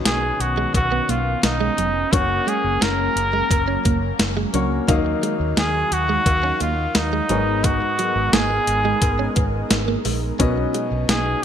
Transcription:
Already playing: grand piano B2 F#3 B3 D#4 C#5, analog synth pad D#3 B3 C#4
0.05 fingered electric bass B1, clean electric guitar A#3, flugelhorn G#4, snare, closed hi-hat, cowbell
0.23 muted clean electric guitar stroke
0.40 fingered electric bass B1, flugelhorn F#4, closed hi-hat
0.57 clean electric guitar G#3
0.74 fingered electric bass B1, flugelhorn F#4, muted clean electric guitar stroke, kick, closed hi-hat, cowbell
0.92 clean electric guitar B3
1.09 fingered electric bass B1, clean electric guitar A#3, flugelhorn F4, closed hi-hat
1.43 fingered electric bass B1, flugelhorn D#4, muted clean electric guitar stroke, snare, closed hi-hat, cowbell
1.61 clean electric guitar G#3
1.78 fingered electric bass F1, clean electric guitar F#3, closed hi-hat
2.12 fingered electric bass F#1, analog synth pad F#3 A#3, clean electric guitar F#3, grand piano A#3 C#4 F#4 C#5, flugelhorn F#4, kick, closed hi-hat, cowbell
2.30 muted clean electric guitar stroke
2.47 clean electric guitar G#3, flugelhorn G#4, closed hi-hat
2.64 fingered electric bass F#1
2.81 fingered electric bass F#1, clean electric guitar A#3, flugelhorn A#4, snare, closed hi-hat, cowbell
2.99 muted clean electric guitar stroke
3.16 fingered electric bass F#1, closed hi-hat
3.33 clean electric guitar G#3
3.50 fingered electric bass F#1, muted clean electric guitar stroke, kick, closed hi-hat, cowbell
3.68 clean electric guitar C#4
3.85 fingered electric bass F#1, clean electric guitar A#3, kick, closed hi-hat
4.19 fingered electric bass F#1, muted clean electric guitar stroke, snare, closed hi-hat, cowbell
4.37 clean electric guitar G#3
4.54 fingered electric bass C#2, clean electric guitar F#3, grand piano A#3 C#4 F#4 C#5, closed hi-hat
4.88 fingered electric bass D#2, analog synth pad D#3 F#3 D#4 F5, grand piano D#3 F#3 A#3 D#5 F5, clean electric guitar D#4, kick, closed hi-hat, cowbell
5.06 muted clean electric guitar stroke
5.23 clean electric guitar G#3, closed hi-hat
5.40 fingered electric bass D#2
5.57 fingered electric bass D#2, clean electric guitar A#3, flugelhorn G#4, snare, closed hi-hat, cowbell
5.75 muted clean electric guitar stroke
5.91 fingered electric bass D#2, flugelhorn F#4, closed hi-hat
6.09 clean electric guitar G#3
6.26 fingered electric bass D#2, muted clean electric guitar stroke, kick, closed hi-hat, cowbell
6.43 clean electric guitar C#4
6.60 fingered electric bass D#2, clean electric guitar A#3, flugelhorn F4, closed hi-hat
6.95 fingered electric bass D#2, flugelhorn D#4, muted clean electric guitar stroke, snare, closed hi-hat, cowbell
7.13 clean electric guitar G#3
7.29 fingered electric bass G#1, grand piano G#2 B3 G#4 A#4 C#5, clean electric guitar F#3, analog synth pad G#3 B3 A#4, closed hi-hat
7.38 grand piano D#5
7.64 clean electric guitar G#3, flugelhorn F#4, kick, closed hi-hat, cowbell
7.82 muted clean electric guitar stroke
7.99 clean electric guitar F#3, closed hi-hat
8.16 fingered electric bass G#1
8.33 fingered electric bass G#1, clean electric guitar A#3, flugelhorn G#4, snare, closed hi-hat, cowbell
8.51 muted clean electric guitar stroke
8.67 fingered electric bass G#1, closed hi-hat
8.85 clean electric guitar G#3
9.02 fingered electric bass G#1, muted clean electric guitar stroke, kick, closed hi-hat, cowbell
9.19 clean electric guitar C#4
9.36 fingered electric bass G#1, clean electric guitar B3, kick, closed hi-hat
9.71 fingered electric bass G#1, muted clean electric guitar stroke, snare, closed hi-hat, cowbell
9.88 clean electric guitar A#3
10.05 fingered electric bass A#1, clean electric guitar G#3, open hi-hat, cowbell
10.39 fingered electric bass B1, grand piano B2 F#3 C#4 B4 D#5, clean electric guitar B3, analog synth pad B3 C#4 D#4, kick, closed hi-hat, cowbell
10.57 muted clean electric guitar stroke
10.74 clean electric guitar G#3, closed hi-hat
10.91 fingered electric bass B1
11.09 fingered electric bass B1, clean electric guitar A#3, flugelhorn G#4, snare, closed hi-hat, cowbell
11.26 muted clean electric guitar stroke

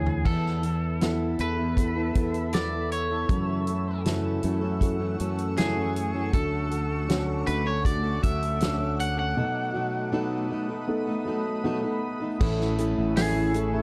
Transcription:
Already playing: fretless electric bass D2, grand piano E3 B3 E4 C#5 E5 F#5 G#5, lead electric guitar G#4
0.06 floor tom
0.25 fretless electric bass E2, steel-string acoustic guitar E3 B3 E4 A4, grand piano E3, ambient pad A4 E5 B5 E6, lead electric guitar A4, kick, crash
0.46 snare
0.63 steel-string acoustic guitar E3 B3 E4 A4, closed hi-hat
1.01 steel-string acoustic guitar E3 B3 E4 A4, grand piano B3 E4 A4, snare, closed hi-hat
1.39 fretless electric bass E2, steel-string acoustic guitar E3 B3 E4 A4, lead electric guitar B4, closed hi-hat
1.57 steel-string acoustic guitar B3 E4 A4
1.77 grand piano B3 E4 A4, kick, closed hi-hat
1.95 steel-string acoustic guitar B3 E4 A4
2.14 fretless electric bass E2, steel-string acoustic guitar E3 B3 E4 A4, kick, closed hi-hat
2.34 closed hi-hat
2.52 steel-string acoustic guitar E3 B3 E4 A4, grand piano B3 E4 A4, lead electric guitar D5, snare, closed hi-hat
2.71 steel-string acoustic guitar B3 E4 A4
2.92 lead electric guitar C#5, closed hi-hat
3.09 steel-string acoustic guitar B3 E4 A4
3.28 steel-string acoustic guitar F#2 C#3 E3 A3 C#4 A4, fretless electric bass F#2, grand piano F#3, ambient pad A3 F#5 C#6, kick, closed hi-hat
3.66 steel-string acoustic guitar E3 A3 C#4 A4, closed hi-hat
4.05 steel-string acoustic guitar F#2 C#3 E3 A3 C#4 A4, grand piano E4 F#4 A4, snare, closed hi-hat
4.42 fretless electric bass F#2, steel-string acoustic guitar E3 A3 C#4 A4, closed hi-hat
4.61 steel-string acoustic guitar E3 A3 C#4 A4
4.81 grand piano E4 F#4 A4, kick, closed hi-hat
4.99 steel-string acoustic guitar E3 A3 C#4 A4
5.18 fretless electric bass F#2, steel-string acoustic guitar E3 A3 C#4 A4, closed hi-hat
5.38 closed hi-hat
5.57 steel-string acoustic guitar F#2 C#3 E3 A3 C#4 A4, grand piano A3 E4 F#4, lead electric guitar G#4, snare, closed hi-hat
5.76 steel-string acoustic guitar E3 A3 C#4
5.96 closed hi-hat
6.14 steel-string acoustic guitar E3 A3 C#4 A4
6.33 fretless electric bass D2, steel-string acoustic guitar D3 F#3 A3 C#4 A4, grand piano D3, lead electric guitar A4, ambient pad D6, kick, closed hi-hat
6.70 steel-string acoustic guitar F#3 A3 C#4 A4, closed hi-hat
7.08 steel-string acoustic guitar D3 F#3 A3 C#4 A4, grand piano C#4 D4 F#4, snare, closed hi-hat
7.46 fretless electric bass D2, steel-string acoustic guitar F#3 A3 C#4 A4, lead electric guitar B4, closed hi-hat
7.65 steel-string acoustic guitar A3 C#4 A4, lead electric guitar C#5
7.85 grand piano A3 D4 F#4, lead electric guitar D5, kick, closed hi-hat
8.03 steel-string acoustic guitar A3 C#4 A4
8.22 fretless electric bass D2, steel-string acoustic guitar F#3 A3 C#4 A4, lead electric guitar E5, kick, closed hi-hat
8.43 closed hi-hat
8.60 steel-string acoustic guitar D3 F#3 A3 C#4 A4, grand piano C#4 D4 F#4, snare, closed hi-hat
8.80 steel-string acoustic guitar A3 C#4 A4
9.00 lead electric guitar F#5, closed hi-hat
9.17 steel-string acoustic guitar A3 C#4 A4, lead electric guitar F#5
9.36 steel-string acoustic guitar B2 F#3 A3 D#4 A4, grand piano B2, ambient pad B5 D#6
9.74 steel-string acoustic guitar F#3 A3 D#4 A4
10.12 steel-string acoustic guitar B2 F#3 A3 D#4 A4, grand piano B3 D#4 A4
10.49 steel-string acoustic guitar F#3 A3 D#4 A4
10.69 steel-string acoustic guitar A3 D#4 A4
10.88 grand piano B3 D#4 A4
11.07 steel-string acoustic guitar A3 D#4 A4
11.25 steel-string acoustic guitar F#3 A3 D#4 A4
11.64 steel-string acoustic guitar B2 F#3 A3 D#4 A4, grand piano B3 D#4 A4
11.83 steel-string acoustic guitar A3 D#4 A4
12.20 steel-string acoustic guitar A3 D#4 A4
12.39 fretless electric bass A1, steel-string acoustic guitar A2 E3 A3 C#4 E4 A4, grand piano A3, ambient pad A3 E5 C#6 E6, kick, crash
12.59 grand piano E4, snare
12.77 steel-string acoustic guitar A3 C#4 E4 A4, grand piano A3, hi-hat pedal, open hi-hat
12.97 fretless electric bass A1, grand piano E4
13.15 steel-string acoustic guitar A2 E3 A3 C#4 E4, grand piano A3, lead electric guitar G#4, snare, hi-hat pedal, open hi-hat
13.35 grand piano E4
13.54 steel-string acoustic guitar A3 C#4 E4 A4, grand piano A3, hi-hat pedal, open hi-hat
13.73 steel-string acoustic guitar A3 C#4 E4 A4, grand piano E4

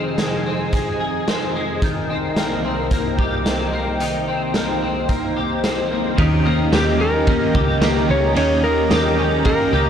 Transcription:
Already playing: analog synth pad F2 C3 D#4 G#4 G#5, clean electric guitar D#3 G#3 C4 G#4
0.18 clean electric guitar G#3, snare, closed hi-hat
0.46 clean electric guitar C4
0.73 clean electric guitar G#3, kick, closed hi-hat
1.00 clean electric guitar G#4
1.28 clean electric guitar C4, snare, closed hi-hat
1.55 clean electric guitar G#3
1.82 analog synth pad C2 C3 D#4 A#4 G5, clean electric guitar D#3, kick, closed hi-hat
2.10 clean electric guitar C4
2.36 clean electric guitar A#3, snare, closed hi-hat
2.65 clean electric guitar C4
2.91 clean electric guitar A#3, kick, closed hi-hat
3.19 clean electric guitar G4, kick
3.46 clean electric guitar C4, snare, closed hi-hat
3.73 clean electric guitar A#3
4.00 clean electric guitar D#3, analog synth pad C5, closed hi-hat
4.28 clean electric guitar C4
4.54 clean electric guitar A#3, snare, closed hi-hat
4.82 clean electric guitar C4
5.09 clean electric guitar A#3, kick, closed hi-hat
5.37 clean electric guitar G4
5.64 clean electric guitar C4, snare, closed hi-hat
5.91 clean electric guitar A#3
6.17 picked electric bass D#2, clean electric guitar D#3 A#3 C#4 G4, analog synth pad G4 D#5 A#5, kick, ride
6.43 clean electric guitar A#3 C#4 G4
6.47 clean electric guitar A#3
6.72 picked electric bass D#2, clean electric guitar D#3 A#3 C#4 G4, electric slide guitar G4, snare, ride, tambourine
6.99 clean electric guitar C#4 G4, electric slide guitar A#4
7.03 clean electric guitar A#3
7.26 clean electric guitar D#3 A#3 C#4, kick, ride
7.30 clean electric guitar G4
7.53 picked electric bass C#2, clean electric guitar C#4 G4, kick
7.81 clean electric guitar D#3 A#3 C#4 G4, snare, ride, tambourine
8.07 picked electric bass C#2, clean electric guitar C#4 G4
8.11 clean electric guitar A#3, electric slide guitar C#5
8.34 picked electric bass D#2, clean electric guitar D#3 A#3 C#4 G4, electric slide guitar C#5, ride
8.62 clean electric guitar A#3 C#4 G4, electric slide guitar A#4
8.66 clean electric guitar A#3
8.88 picked electric bass D#2, clean electric guitar D#3 A#3 C#4 G4, snare, ride, tambourine
9.16 clean electric guitar C#4 G4
9.20 clean electric guitar A#3
9.44 clean electric guitar D#3 A#3 C#4, electric slide guitar A#4, kick, ride
9.48 clean electric guitar G4
9.71 picked electric bass C#2, clean electric guitar C#4 G4
9.75 clean electric guitar A#3

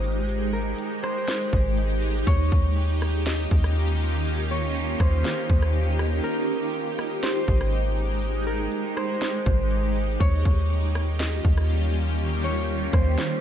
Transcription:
Already playing: 808-style bass G#1, ambient pad G#3 D#4 G4, harp A#4 C5
0.04 closed hi-hat
0.12 closed hi-hat
0.21 closed hi-hat
0.29 closed hi-hat
0.53 harp A#4
0.78 closed hi-hat
1.03 harp C5, cross-stick
1.28 snare, closed hi-hat
1.53 808-style bass G#1, kick
1.77 closed hi-hat
2.02 closed hi-hat
2.10 closed hi-hat
2.19 closed hi-hat
2.27 808-style bass D#2, ambient pad D#3 A#3 C#4 F4, harp C#5, kick, closed hi-hat
2.52 808-style bass D#2, kick
2.77 closed hi-hat
3.02 cross-stick
3.26 harp D#5, snare, closed hi-hat
3.51 808-style bass D#2, kick
3.64 cross-stick
3.76 closed hi-hat
4.01 closed hi-hat
4.09 closed hi-hat
4.17 closed hi-hat
4.25 closed hi-hat
4.51 harp C#5
4.75 closed hi-hat
5.00 808-style bass D#2, harp C5, kick, cross-stick
5.24 snare, closed hi-hat
5.50 808-style bass D#2, kick
5.62 cross-stick
5.74 closed hi-hat
5.99 cross-stick, closed hi-hat
6.24 ambient pad G#3, harp A#4, closed hi-hat
6.74 closed hi-hat
6.99 cross-stick
7.23 harp C5, snare, closed hi-hat
7.48 808-style bass G#1, kick
7.61 cross-stick
7.73 closed hi-hat
7.97 closed hi-hat
8.06 closed hi-hat
8.14 closed hi-hat
8.22 closed hi-hat
8.46 harp A#4
8.72 closed hi-hat
8.97 harp C5, cross-stick
9.21 snare, closed hi-hat
9.46 808-style bass G#1, kick
9.71 closed hi-hat
9.96 closed hi-hat
10.04 closed hi-hat
10.12 closed hi-hat
10.20 808-style bass D#2, ambient pad D#3 G3 A#3 C#4 F4 G4, harp C#5, kick, closed hi-hat
10.45 808-style bass D#2, kick
10.70 closed hi-hat
10.95 cross-stick
11.19 harp D#5, snare, closed hi-hat
11.45 808-style bass D#2, kick
11.58 cross-stick
11.69 closed hi-hat
11.94 closed hi-hat
12.02 closed hi-hat
12.11 closed hi-hat
12.19 ambient pad D#4, closed hi-hat
12.44 harp C#5
12.69 closed hi-hat
12.93 808-style bass D#2, harp C5, kick, cross-stick
13.18 snare, closed hi-hat

